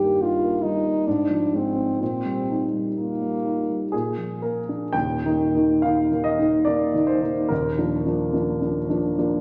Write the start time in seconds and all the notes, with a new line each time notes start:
Already playing: G2 D#3 G3 G4
0.03 A#3
0.22 D#4 F4
0.43 A#3
0.63 G3 D#4
1.07 G#2 D4
1.30 F3
1.53 G#3 C4
1.76 C4
2.00 A#2 C4
2.25 G3
2.50 D#4
2.73 G3
2.98 A#3 D#4
3.22 G3
3.46 D#4
3.69 G3
3.92 A#2 G#4
4.17 F3
4.42 A#3 A#4
4.69 D4
4.93 D#1 D#2 G5
5.25 D#3 A#3 D#4
5.55 D#3 A#3 D#4
5.82 D#3 A#3 D#4 F5
6.12 D#3 A#3 D#4
6.24 D#5
6.39 D#3 A#3 D#4
6.65 D#3 A#3 D#4 D5
6.94 D#3 A#3 D#4
7.07 C5
7.21 D#3 A#3 D#4
7.49 D#1 D#2 A#4
7.78 F3 A#3 D4
8.06 F3 A#3 D4
8.33 F3 A#3 D4
8.62 F3 A#3 D4
8.89 F3 A#3 D4
9.18 F3 A#3 D4